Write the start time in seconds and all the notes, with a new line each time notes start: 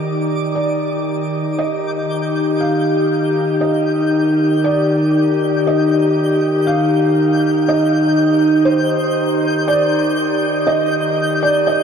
Already playing: D#3 D#4 G4 D5 D6
0.55 D5
1.59 D#5 G6
2.60 F5
3.61 D#5
4.64 D5
5.67 D#5
6.67 F5
7.69 D#5
8.65 C5
9.68 D5
10.67 D#5
11.43 D5
11.67 D#5